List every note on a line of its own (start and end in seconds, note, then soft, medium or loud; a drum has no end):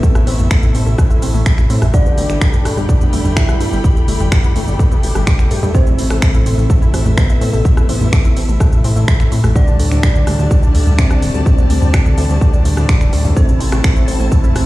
0.00 5.73 A2 medium
0.00 0.72 C3 medium
0.00 5.73 A3 medium
0.00 0.72 A3 medium
0.00 0.89 B3 loud
0.00 0.72 E4 medium
0.00 9.52 A4 medium
0.00 0.06 A4 medium
0.00 0.89 B4 loud
0.00 1.90 E5 medium
0.00 0.06 A5 medium
0.00 kick loud
0.00 shaker medium
0.15 0.24 A1 medium
0.15 0.18 E4 loud
0.15 0.18 E5 medium
0.15 cross-stick medium
0.15 shaker soft
0.27 0.36 A1 loud
0.27 0.32 C4 loud
0.27 0.32 C5 medium
0.27 open hi-hat loud
0.27 shaker medium
0.39 0.48 A1 medium
0.39 0.44 A3 medium
0.39 0.44 A4 medium
0.39 mid tom loud
0.39 shaker soft
0.51 0.59 A4 loud
0.51 0.59 A5 medium
0.51 finger snap loud
0.51 kick loud
0.51 shaker medium
0.63 0.72 A1 medium
0.63 0.71 E4 medium
0.63 0.71 E5 medium
0.63 shaker soft
0.75 0.83 A1 loud
0.75 0.96 C3 medium
0.75 0.96 A3 medium
0.75 0.83 C4 medium
0.75 0.96 E4 medium
0.75 0.83 C5 medium
0.75 open hi-hat medium
0.75 shaker medium
0.86 0.95 A1 medium
0.86 0.92 A3 medium
0.86 0.92 A4 medium
0.86 shaker soft
0.98 1.91 C3 medium
0.98 1.91 A3 medium
0.98 1.91 E4 medium
0.98 1.02 A4 medium
0.98 1.02 A5 medium
0.98 kick loud
0.98 cross-stick medium
0.98 shaker medium
1.10 1.19 A1 medium
1.10 1.14 E4 medium
1.10 1.14 E5 medium
1.10 shaker soft
1.22 1.31 A1 loud
1.22 1.28 C4 loud
1.22 1.28 C5 medium
1.22 open hi-hat loud
1.22 shaker medium
1.34 1.43 A1 medium
1.34 1.42 A3 loud
1.34 1.42 A4 medium
1.34 shaker soft
1.46 1.49 A4 medium
1.46 1.49 A5 medium
1.46 finger snap loud
1.46 kick loud
1.46 shaker medium
1.58 1.67 A1 medium
1.58 1.61 E4 loud
1.58 1.61 E5 medium
1.58 finger snap soft
1.58 shaker soft
1.70 1.79 A2 loud
1.70 1.75 C4 loud
1.70 1.75 C5 medium
1.70 open hi-hat medium
1.70 shaker medium
1.82 1.91 A1 medium
1.82 1.87 A3 medium
1.82 1.87 A4 medium
1.82 cross-stick medium
1.82 mid tom medium
1.82 shaker soft
1.94 2.62 B2 medium
1.94 2.62 A3 medium
1.94 3.27 D4 loud
1.94 2.02 D4 loud
1.94 2.62 G4 medium
1.94 3.27 D5 loud
1.94 2.02 D5 medium
1.94 5.71 G5 medium
1.94 5.71 B5 medium
1.94 kick loud
1.94 shaker medium
2.06 2.14 G1 medium
2.06 2.14 B3 loud
2.06 2.14 B4 medium
2.06 shaker soft
2.18 2.26 G1 loud
2.18 2.26 A3 medium
2.18 2.26 A4 medium
2.18 open hi-hat loud
2.18 shaker medium
2.29 2.38 G1 medium
2.29 2.35 G3 medium
2.29 2.35 G4 medium
2.29 finger snap soft
2.29 shaker soft
2.41 2.45 D4 medium
2.41 2.45 D5 medium
2.41 finger snap loud
2.41 kick loud
2.41 shaker medium
2.53 2.62 G1 medium
2.53 2.57 B3 medium
2.53 2.57 B4 medium
2.53 shaker soft
2.65 2.74 G1 loud
2.65 2.86 B2 medium
2.65 2.86 A3 medium
2.65 2.71 A3 loud
2.65 2.86 G4 medium
2.65 2.71 A4 medium
2.65 cross-stick medium
2.65 open hi-hat medium
2.65 shaker medium
2.77 2.86 G1 loud
2.77 2.85 G3 loud
2.77 2.85 G4 medium
2.77 shaker soft
2.89 3.81 B2 medium
2.89 3.81 A3 medium
2.89 2.92 D4 medium
2.89 3.81 G4 medium
2.89 2.92 D5 medium
2.89 kick loud
2.89 shaker medium
3.01 3.10 G1 medium
3.01 3.04 B3 loud
3.01 3.04 B4 medium
3.01 mid tom medium
3.01 shaker soft
3.13 3.22 G1 loud
3.13 3.18 A3 loud
3.13 3.18 A4 medium
3.13 open hi-hat loud
3.13 shaker medium
3.25 3.34 G1 medium
3.25 3.30 G3 medium
3.25 3.30 G4 medium
3.25 mid tom medium
3.25 shaker soft
3.37 3.45 D4 loud
3.37 4.70 E4 loud
3.37 3.45 D5 medium
3.37 4.70 E5 loud
3.37 finger snap loud
3.37 kick loud
3.37 shaker medium
3.49 3.57 G1 medium
3.49 3.57 B3 loud
3.49 3.56 B4 medium
3.49 cross-stick medium
3.49 shaker soft
3.60 3.69 G2 loud
3.60 3.69 A3 medium
3.60 3.68 A4 medium
3.60 open hi-hat medium
3.60 shaker medium
3.72 3.81 G1 medium
3.72 3.78 G3 medium
3.72 3.78 G4 medium
3.72 shaker soft
3.84 4.53 B2 medium
3.84 4.53 A3 medium
3.84 3.87 D4 medium
3.84 4.53 G4 medium
3.84 3.87 D5 medium
3.84 kick loud
3.84 shaker medium
3.96 4.05 G1 medium
3.96 3.99 B3 medium
3.96 3.99 B4 medium
3.96 shaker soft
4.08 4.17 G1 loud
4.08 4.13 A3 loud
4.08 4.13 A4 medium
4.08 open hi-hat loud
4.08 shaker medium
4.20 4.29 G1 medium
4.20 4.28 G3 loud
4.20 4.28 G4 medium
4.20 mid tom medium
4.20 shaker soft
4.32 4.35 D4 medium
4.32 4.35 D5 medium
4.32 finger snap loud
4.32 kick loud
4.32 cross-stick medium
4.32 shaker medium
4.44 4.53 G1 medium
4.44 4.47 B3 loud
4.44 4.47 B4 medium
4.44 shaker soft
4.56 4.64 G1 loud
4.56 4.77 B2 medium
4.56 4.77 A3 medium
4.56 4.61 A3 loud
4.56 4.77 G4 medium
4.56 4.61 A4 medium
4.56 open hi-hat medium
4.56 shaker medium
4.68 4.76 G1 medium
4.68 4.73 G3 medium
4.68 4.73 G4 medium
4.68 shaker soft
4.79 5.72 B2 medium
4.79 5.72 A3 medium
4.79 4.87 D4 loud
4.79 5.72 G4 medium
4.79 4.87 D5 medium
4.79 kick loud
4.79 shaker medium
4.91 5.00 G1 medium
4.91 4.99 B3 loud
4.91 4.99 B4 medium
4.91 shaker soft
5.03 5.12 G1 loud
5.03 5.11 A3 medium
5.03 5.11 A4 medium
5.03 open hi-hat loud
5.03 shaker medium
5.15 5.24 G1 medium
5.15 5.21 G3 medium
5.15 5.21 G4 medium
5.15 cross-stick medium
5.15 shaker soft
5.27 5.30 D4 medium
5.27 5.30 D5 medium
5.27 finger snap loud
5.27 kick loud
5.27 shaker medium
5.39 5.48 A1 medium
5.39 5.42 B3 medium
5.39 5.42 B4 medium
5.39 finger snap soft
5.39 shaker soft
5.51 5.60 G2 loud
5.51 5.56 A3 loud
5.51 5.56 A4 medium
5.51 open hi-hat medium
5.51 shaker medium
5.63 5.72 G2 medium
5.63 5.71 G3 loud
5.63 5.71 G4 medium
5.63 mid tom medium
5.63 shaker soft
5.75 14.66 A2 medium
5.75 6.43 C3 medium
5.75 6.43 A3 medium
5.75 14.66 A3 medium
5.75 7.08 C4 loud
5.75 6.43 E4 medium
5.75 5.78 A4 medium
5.75 7.08 C5 loud
5.75 9.52 E5 medium
5.75 5.78 A5 medium
5.75 kick loud
5.75 shaker medium
5.87 5.95 A1 medium
5.87 5.90 E4 medium
5.87 5.90 E5 medium
5.87 shaker soft
5.99 6.07 A1 loud
5.99 6.04 C4 loud
5.99 6.04 C5 medium
5.99 open hi-hat loud
5.99 shaker medium
6.10 6.19 A1 medium
6.10 6.18 A3 loud
6.10 6.18 A4 medium
6.10 finger snap soft
6.10 cross-stick medium
6.10 shaker soft
6.22 6.25 A4 medium
6.22 6.26 A5 medium
6.22 finger snap loud
6.22 kick loud
6.22 shaker medium
6.34 6.43 A1 medium
6.34 6.37 E4 loud
6.34 6.37 E5 medium
6.34 shaker soft
6.46 6.55 A1 loud
6.46 6.67 C3 medium
6.46 6.67 A3 medium
6.46 6.51 C4 loud
6.46 6.67 E4 medium
6.46 6.51 C5 medium
6.46 open hi-hat loud
6.46 shaker medium
6.58 6.67 A1 medium
6.58 6.63 A3 medium
6.58 6.63 A4 medium
6.58 shaker soft
6.70 7.62 C3 medium
6.70 7.62 A3 medium
6.70 7.62 E4 medium
6.70 6.78 A4 loud
6.70 6.78 A5 medium
6.70 kick loud
6.70 shaker medium
6.82 6.91 A1 medium
6.82 6.90 E4 loud
6.82 6.90 E5 medium
6.82 mid tom medium
6.82 shaker soft
6.94 7.03 A1 loud
6.94 7.02 C4 medium
6.94 7.02 C5 medium
6.94 cross-stick soft
6.94 open hi-hat loud
6.94 shaker medium
7.06 7.14 A1 medium
7.06 7.11 A3 medium
7.06 7.11 A4 medium
7.06 mid tom medium
7.06 shaker soft
7.17 8.51 B3 loud
7.17 7.21 A4 medium
7.17 8.51 B4 loud
7.17 7.21 A5 medium
7.17 finger snap loud
7.17 kick loud
7.17 shaker medium
7.29 7.38 A1 medium
7.29 7.33 E4 medium
7.29 7.33 E5 medium
7.29 shaker soft
7.41 7.50 A2 loud
7.41 7.47 C4 loud
7.41 7.47 C5 medium
7.41 open hi-hat medium
7.41 shaker medium
7.53 7.62 A1 medium
7.53 7.61 A3 loud
7.53 7.61 A4 medium
7.53 shaker soft
7.65 8.34 C3 medium
7.65 8.34 A3 medium
7.65 8.34 E4 medium
7.65 7.68 A4 medium
7.65 7.68 A5 medium
7.65 kick loud
7.65 shaker medium
7.77 7.86 A1 medium
7.77 7.80 E4 loud
7.77 7.80 E5 medium
7.77 cross-stick medium
7.77 shaker soft
7.89 7.98 A1 loud
7.89 7.94 C4 loud
7.89 7.94 C5 medium
7.89 open hi-hat loud
7.89 shaker medium
8.01 8.10 A1 medium
8.01 8.06 A3 medium
8.01 8.06 A4 medium
8.01 mid tom medium
8.01 shaker soft
8.13 8.21 A4 loud
8.13 8.21 A5 medium
8.13 finger snap loud
8.13 kick loud
8.13 shaker medium
8.25 8.34 A1 medium
8.25 8.33 E4 loud
8.25 8.33 E5 medium
8.25 shaker soft
8.37 8.45 A1 loud
8.37 8.58 C3 medium
8.37 8.58 A3 medium
8.37 8.45 C4 medium
8.37 8.58 E4 medium
8.37 8.45 C5 medium
8.37 open hi-hat loud
8.37 shaker medium
8.49 8.57 A1 loud
8.49 8.54 A3 medium
8.49 8.54 A4 medium
8.49 shaker soft
8.60 9.53 C3 medium
8.60 9.53 A3 medium
8.60 9.53 E4 medium
8.60 8.64 A4 medium
8.60 8.64 A5 medium
8.60 kick loud
8.60 cross-stick medium
8.60 shaker medium
8.72 8.81 A1 medium
8.72 8.76 E4 medium
8.72 8.76 E5 medium
8.72 shaker soft
8.84 8.93 A1 loud
8.84 8.90 C4 loud
8.84 8.90 C5 medium
8.84 open hi-hat loud
8.84 shaker medium
8.96 9.05 A1 medium
8.96 9.04 A3 loud
8.96 9.04 A4 medium
8.96 shaker soft
9.08 9.11 A4 medium
9.08 9.11 A5 medium
9.08 finger snap loud
9.08 kick loud
9.08 shaker medium
9.20 9.29 A1 medium
9.20 9.23 E4 loud
9.20 9.23 E5 medium
9.20 finger snap soft
9.20 shaker soft
9.32 9.41 A2 loud
9.32 9.37 C4 loud
9.32 9.37 C5 medium
9.32 open hi-hat medium
9.32 shaker medium
9.44 9.53 A1 medium
9.44 9.49 A3 medium
9.44 9.49 A4 medium
9.44 cross-stick medium
9.44 mid tom medium
9.44 shaker soft
9.56 10.24 A2 medium
9.56 10.24 G3 medium
9.56 10.89 D4 loud
9.56 10.24 D4 medium
9.56 9.64 G4 loud
9.56 13.33 G4 medium
9.56 10.89 D5 loud
9.56 13.33 D5 medium
9.56 9.64 G5 medium
9.56 13.33 A5 medium
9.56 kick loud
9.56 shaker medium
9.68 9.76 D2 medium
9.68 9.76 D4 loud
9.68 9.76 D5 medium
9.68 shaker soft
9.79 9.88 D2 loud
9.79 9.87 A3 medium
9.79 9.87 A4 medium
9.79 open hi-hat loud
9.79 shaker medium
9.91 10.00 D2 medium
9.91 9.97 G3 medium
9.91 9.97 G4 medium
9.91 finger snap soft
9.91 shaker soft
10.03 10.06 G4 medium
10.03 10.06 G5 medium
10.03 finger snap loud
10.03 kick loud
10.03 shaker medium
10.15 10.24 D2 medium
10.15 10.18 D4 medium
10.15 10.18 D5 medium
10.15 shaker soft
10.27 10.36 D2 loud
10.27 10.48 A2 medium
10.27 10.48 G3 medium
10.27 10.32 A3 loud
10.27 10.48 D4 medium
10.27 10.32 A4 medium
10.27 cross-stick medium
10.27 open hi-hat loud
10.27 shaker medium
10.39 10.48 D2 medium
10.39 10.47 G3 loud
10.39 10.47 G4 medium
10.39 shaker soft
10.51 11.43 A2 medium
10.51 11.43 G3 medium
10.51 11.43 D4 medium
10.51 10.54 G4 medium
10.51 10.54 G5 medium
10.51 kick loud
10.51 shaker medium
10.63 10.72 D2 medium
10.63 10.66 D4 loud
10.63 10.66 D5 medium
10.63 mid tom medium
10.63 shaker soft
10.75 10.84 D2 loud
10.75 10.80 A3 loud
10.75 10.80 A4 medium
10.75 open hi-hat loud
10.75 shaker medium
10.87 10.95 D2 medium
10.87 10.92 G3 medium
10.87 10.92 G4 medium
10.87 mid tom medium
10.87 shaker soft
10.98 12.32 C4 loud
10.98 11.06 G4 loud
10.98 12.32 C5 medium
10.98 11.06 G5 medium
10.98 finger snap loud
10.98 kick loud
10.98 shaker medium
11.10 11.19 D2 medium
11.10 11.18 D4 loud
11.10 11.18 D5 medium
11.10 cross-stick medium
11.10 shaker soft
11.22 11.31 D1 loud
11.22 11.30 A3 medium
11.22 11.30 A4 medium
11.22 open hi-hat loud
11.22 shaker medium
11.34 11.43 D2 medium
11.34 11.40 G3 medium
11.34 11.40 G4 medium
11.34 shaker soft
11.46 12.15 A2 medium
11.46 12.15 G3 medium
11.46 12.15 D4 medium
11.46 11.49 G4 medium
11.46 11.49 G5 medium
11.46 kick loud
11.46 shaker medium
11.58 11.67 D2 medium
11.58 11.61 D4 medium
11.58 11.61 D5 medium
11.58 shaker soft
11.70 11.79 D2 loud
11.70 11.75 A3 loud
11.70 11.75 A4 medium
11.70 open hi-hat loud
11.70 shaker medium
11.82 11.91 D2 medium
11.82 11.90 G3 loud
11.82 11.90 G4 medium
11.82 mid tom loud
11.82 shaker soft
11.94 11.97 G4 medium
11.94 11.97 G5 medium
11.94 finger snap loud
11.94 kick loud
11.94 cross-stick medium
11.94 shaker medium
12.06 12.15 D2 medium
12.06 12.09 D4 loud
12.06 12.09 D5 medium
12.06 shaker soft
12.17 12.26 D2 loud
12.17 12.39 A2 medium
12.17 12.39 G3 medium
12.17 12.23 A3 loud
12.17 12.39 D4 medium
12.17 12.23 A4 medium
12.17 open hi-hat loud
12.17 shaker medium
12.29 12.38 D2 medium
12.29 12.35 G3 medium
12.29 12.35 G4 medium
12.29 shaker soft
12.41 12.63 A2 medium
12.41 12.63 G3 medium
12.41 12.63 D4 medium
12.41 12.49 G4 loud
12.41 12.49 G5 medium
12.41 kick loud
12.41 shaker medium
12.53 12.62 D2 medium
12.53 12.61 D4 loud
12.53 12.61 D5 medium
12.53 shaker soft
12.65 12.74 D2 loud
12.65 13.10 A2 medium
12.65 13.10 G3 medium
12.65 12.73 A3 medium
12.65 13.10 D4 medium
12.65 12.73 A4 medium
12.65 open hi-hat loud
12.65 shaker medium
12.77 12.86 D2 medium
12.77 12.82 G3 medium
12.77 12.82 G4 medium
12.77 cross-stick medium
12.77 shaker soft
12.89 12.92 G4 medium
12.89 12.92 G5 medium
12.89 finger snap loud
12.89 kick loud
12.89 shaker medium
13.01 13.10 D1 medium
13.01 13.04 D4 medium
13.01 13.04 D5 medium
13.01 finger snap soft
13.01 shaker soft
13.13 13.22 D2 loud
13.13 13.34 A2 medium
13.13 13.34 G3 medium
13.13 13.18 A3 loud
13.13 13.34 D4 medium
13.13 13.18 A4 medium
13.13 open hi-hat medium
13.13 shaker medium
13.25 13.34 D2 medium
13.25 13.33 G3 loud
13.25 13.33 G4 medium
13.25 mid tom medium
13.25 shaker soft
13.36 14.05 C3 medium
13.36 14.66 C3 medium
13.36 14.05 A3 medium
13.36 14.66 C4 loud
13.36 14.05 E4 medium
13.36 14.66 E4 medium
13.36 13.40 A4 medium
13.36 14.66 C5 medium
13.36 13.40 A5 medium
13.36 14.66 A5 medium
13.36 kick loud
13.36 shaker medium
13.49 13.57 A1 medium
13.49 13.52 E4 medium
13.49 13.52 E5 medium
13.49 shaker soft
13.60 13.69 A1 loud
13.60 13.66 C4 loud
13.60 13.66 C5 medium
13.60 open hi-hat loud
13.60 shaker medium
13.72 13.81 A1 medium
13.72 13.80 A3 loud
13.72 13.80 A4 medium
13.72 finger snap soft
13.72 cross-stick medium
13.72 shaker soft
13.84 13.87 A4 medium
13.84 13.87 A5 medium
13.84 finger snap loud
13.84 kick loud
13.84 shaker medium
13.96 14.05 A1 medium
13.96 13.99 E4 loud
13.96 13.99 E5 medium
13.96 shaker soft
14.08 14.17 A1 loud
14.08 14.29 C3 medium
14.08 14.29 A3 medium
14.08 14.13 C4 loud
14.08 14.29 E4 medium
14.08 14.13 C5 medium
14.08 open hi-hat loud
14.08 shaker medium
14.20 14.29 A1 loud
14.20 14.25 A3 medium
14.20 14.25 A4 medium
14.20 shaker soft
14.32 14.66 C3 medium
14.32 14.66 A3 medium
14.32 14.66 E4 medium
14.32 14.40 A4 loud
14.32 14.40 A5 medium
14.32 kick loud
14.32 shaker medium
14.44 14.53 A1 medium
14.44 14.52 E4 loud
14.44 14.52 E5 medium
14.44 mid tom medium
14.44 shaker soft
14.55 14.64 A1 loud
14.55 14.64 C4 medium
14.55 14.64 C5 medium
14.55 cross-stick medium
14.55 open hi-hat loud
14.55 shaker medium